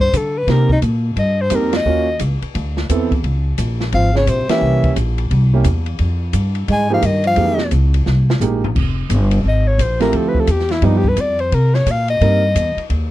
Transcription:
Already playing: upright bass G2
0.00 soprano saxophone C5, kick
0.13 upright bass D3, soprano saxophone A4, kick, hi-hat pedal, ride
0.38 soprano saxophone B4
0.47 upright bass C3, grand piano A#3 C4 D#4 G4, soprano saxophone A#4, kick, snare, ride
0.69 soprano saxophone D#4, kick
0.82 upright bass A#2, kick, hi-hat pedal, ride
1.16 upright bass G2, soprano saxophone D#5, kick, ride
1.41 soprano saxophone C5
1.50 upright bass F2, grand piano A#3 C4 D#4 G4, kick, hi-hat pedal, ride
1.55 soprano saxophone A#4
1.73 soprano saxophone D#5, snare, ride
1.85 upright bass D#2, grand piano A#3 C#4 F4 F#4
2.19 upright bass C#2, kick, hi-hat pedal, ride
2.42 muted upright bass stroke, ride
2.55 upright bass D2, kick, ride
2.77 snare
2.89 upright bass E2, grand piano B3 C4 E4 A4, kick, hi-hat pedal, ride
3.11 kick, ride
3.24 upright bass C#2, kick, ride
3.58 upright bass A#1, kick, hi-hat pedal, ride
3.80 snare
3.92 upright bass G#1, trombone F3, soprano saxophone F5, kick, ride
4.13 trombone C#3, soprano saxophone C#5, snare
4.27 upright bass A#1, trombone C3, soprano saxophone C5, kick, hi-hat pedal, ride
4.48 trombone E3, grand piano A#3 C#4 E4 G4, soprano saxophone E5, muted upright bass stroke, snare, ride
4.61 upright bass C2
4.84 kick, ride
4.96 upright bass A#1, kick, hi-hat pedal, ride
5.18 ride
5.31 upright bass C2, kick, ride
5.53 grand piano A#3 C#4 E4 G4
5.64 upright bass E2, kick, hi-hat pedal, ride
5.86 ride
5.99 upright bass F2, kick, ride
6.33 upright bass G2, kick, hi-hat pedal, ride
6.55 ride
6.68 upright bass G#2, trombone G#3, kick, ride
6.72 soprano saxophone G#5
6.90 trombone F3, grand piano G#3 A#3 D#4 G4
6.94 soprano saxophone F5
7.02 upright bass G2, trombone D#3, soprano saxophone D#5, kick, hi-hat pedal, ride
7.24 trombone F3, soprano saxophone F5, ride
7.36 upright bass F2, grand piano G#3 A#3 D#4 G4, kick, ride
7.58 snare
7.71 upright bass C#2, kick, hi-hat pedal, ride
7.94 ride
8.06 upright bass C2, snare
8.30 snare
8.40 upright bass A#1, grand piano G#3 A#3 D#4 G4, floor tom, hi-hat pedal
8.64 floor tom
8.75 upright bass F1, kick, crash
9.09 upright bass G1, kick, hi-hat pedal, ride
9.31 ride
9.44 upright bass G#1, kick
9.48 soprano saxophone D#5
9.67 soprano saxophone C#5
9.78 upright bass A#1, soprano saxophone C5, kick, hi-hat pedal, ride
10.00 grand piano F3 A3 C4 E4 G4, soprano saxophone A#4, snare, ride
10.13 upright bass D2, soprano saxophone A4, kick, ride
10.29 soprano saxophone B4
10.35 kick
10.40 soprano saxophone A4
10.47 upright bass E2, hi-hat pedal, ride
10.52 soprano saxophone G4
10.59 snare
10.69 soprano saxophone E4, snare, ride
10.82 upright bass G2, grand piano F3 B3 D4 D#4 G4, soprano saxophone D#4, kick, ride
10.97 soprano saxophone G4
11.04 kick
11.09 soprano saxophone B4
11.16 upright bass F2, kick, hi-hat pedal, ride
11.21 soprano saxophone D5
11.39 soprano saxophone C5, ride
11.52 upright bass C3, soprano saxophone A#4, kick, ride
11.74 soprano saxophone C#5, snare
11.86 upright bass A#2, kick, hi-hat pedal, ride
11.91 soprano saxophone F5
12.08 soprano saxophone D#5, ride
12.21 upright bass G2, grand piano G3 A#3 C4 D#4 A#4, kick, ride
12.55 upright bass E2, kick, hi-hat pedal, ride
12.76 muted upright bass stroke, ride
12.90 upright bass D#2, kick, ride

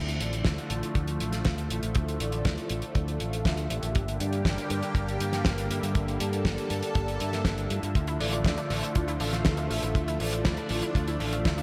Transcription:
Already playing: fingered electric bass D2, analog synth pad D3 F3 A3, analog polysynth A3 E4 F4 E5
0.08 closed hi-hat
0.20 fingered electric bass A1, analog polysynth A3 E4 F4 D5, closed hi-hat
0.33 closed hi-hat
0.45 fingered electric bass D2, kick, snare, closed hi-hat
0.58 closed hi-hat
0.70 fingered electric bass A1, analog polysynth A3 E4 F4 D5, closed hi-hat
0.83 closed hi-hat
0.95 fingered electric bass D2, kick, closed hi-hat
1.08 closed hi-hat
1.20 fingered electric bass A1, analog polysynth A3 F4 E5 F5, closed hi-hat
1.32 snare, closed hi-hat
1.45 fingered electric bass D2, kick, snare, closed hi-hat
1.58 closed hi-hat
1.70 fingered electric bass A1, analog polysynth A3 E4 F4 E5, closed hi-hat
1.83 fingered electric bass A1, closed hi-hat
1.95 fingered electric bass D2, kick, closed hi-hat
2.08 closed hi-hat
2.20 fingered electric bass A1, analog polysynth A3 E4 F4 D5, closed hi-hat
2.32 closed hi-hat
2.45 fingered electric bass D2, kick, snare, closed hi-hat
2.58 closed hi-hat
2.69 fingered electric bass A1, analog polysynth A3 E4 F4 D5, closed hi-hat
2.82 closed hi-hat
2.95 fingered electric bass D2, kick, closed hi-hat
3.08 closed hi-hat
3.20 fingered electric bass A1, analog polysynth A3 F4 E5 F5, closed hi-hat
3.33 closed hi-hat
3.45 fingered electric bass D2, kick, snare, closed hi-hat
3.57 closed hi-hat
3.70 fingered electric bass A1, analog polysynth A#3 D4 G4 E5, closed hi-hat
3.83 fingered electric bass A1, closed hi-hat
3.95 fingered electric bass G1, analog synth pad G3 A#3 G4, kick, closed hi-hat
4.08 closed hi-hat
4.20 fingered electric bass G2, analog polysynth A#3 D4 G4 D5, closed hi-hat
4.33 closed hi-hat
4.45 fingered electric bass G1, kick, snare, closed hi-hat
4.58 closed hi-hat
4.70 fingered electric bass G2, analog polysynth A#3 D4 G4 D5, closed hi-hat
4.83 closed hi-hat
4.95 fingered electric bass G1, kick, closed hi-hat
5.08 closed hi-hat
5.20 fingered electric bass G2, analog polysynth A#3 D4 G4 F5, closed hi-hat
5.33 snare, closed hi-hat
5.45 fingered electric bass G1, kick, snare, closed hi-hat
5.58 closed hi-hat
5.70 fingered electric bass G2, analog polysynth A#3 D4 G4 E5, closed hi-hat
5.83 fingered electric bass G2, closed hi-hat
5.95 fingered electric bass G1, analog synth pad A4, kick, closed hi-hat
6.08 closed hi-hat
6.20 fingered electric bass G2, analog polysynth A#3 D4 G4 D5, closed hi-hat
6.33 closed hi-hat
6.45 fingered electric bass G1, kick, snare, closed hi-hat
6.58 closed hi-hat
6.70 fingered electric bass G2, analog polysynth A#3 D4 G4 D5, closed hi-hat
6.83 closed hi-hat
6.95 fingered electric bass G1, kick, closed hi-hat
7.08 closed hi-hat
7.20 fingered electric bass G2, analog polysynth A#3 D4 G4 E5, closed hi-hat
7.33 snare, closed hi-hat
7.45 fingered electric bass G1, kick, snare, closed hi-hat
7.58 analog polysynth A#3 D4 G4 E5, closed hi-hat
7.70 fingered electric bass G2, analog polysynth A3 E4 F4 E5, closed hi-hat
7.83 fingered electric bass G2, closed hi-hat
7.95 fingered electric bass D2, analog synth pad F3 A3, synth arpeggio sound F4, kick, closed hi-hat
8.07 synth arpeggio sound E4, closed hi-hat
8.20 fingered electric bass A1, analog polysynth A3 E4 F4 D5, synth arpeggio sound D4, open hi-hat
8.33 synth arpeggio sound F4, closed hi-hat
8.45 fingered electric bass D2, synth arpeggio sound E4, kick, snare, closed hi-hat
8.57 synth arpeggio sound D4, closed hi-hat
8.70 fingered electric bass A1, analog polysynth A3 E4 F4 D5, synth arpeggio sound F4, open hi-hat
8.83 synth arpeggio sound E4, closed hi-hat
8.95 fingered electric bass D2, synth arpeggio sound F4, kick, closed hi-hat
9.08 synth arpeggio sound E4, closed hi-hat
9.20 fingered electric bass A1, analog polysynth A3 F4 E5 F5, synth arpeggio sound D4, open hi-hat
9.33 synth arpeggio sound F4, snare, closed hi-hat
9.45 fingered electric bass D2, synth arpeggio sound E4, kick, snare, closed hi-hat
9.57 synth arpeggio sound D4, closed hi-hat
9.70 fingered electric bass A1, analog polysynth A3 E4 F4 E5, synth arpeggio sound F4, open hi-hat
9.83 fingered electric bass A1, synth arpeggio sound E4, closed hi-hat
9.95 fingered electric bass D2, analog synth pad D4, synth arpeggio sound F4, kick, closed hi-hat
10.08 synth arpeggio sound E4, closed hi-hat
10.20 fingered electric bass A1, analog polysynth A3 E4 F4 D5, synth arpeggio sound D4, open hi-hat
10.33 synth arpeggio sound F4, closed hi-hat
10.45 fingered electric bass D2, synth arpeggio sound E4, kick, snare, closed hi-hat
10.57 synth arpeggio sound D4, closed hi-hat
10.69 fingered electric bass A1, analog polysynth A3 E4 F4 D5, synth arpeggio sound F4, open hi-hat
10.82 synth arpeggio sound E4, closed hi-hat
10.95 fingered electric bass D2, synth arpeggio sound F4, kick, closed hi-hat
11.08 synth arpeggio sound E4, closed hi-hat
11.20 fingered electric bass A1, analog polysynth A3 F4 E5 F5, synth arpeggio sound D4, open hi-hat
11.33 synth arpeggio sound F4, closed hi-hat
11.45 fingered electric bass D2, synth arpeggio sound E4, kick, snare, closed hi-hat
11.58 synth arpeggio sound D4, closed hi-hat

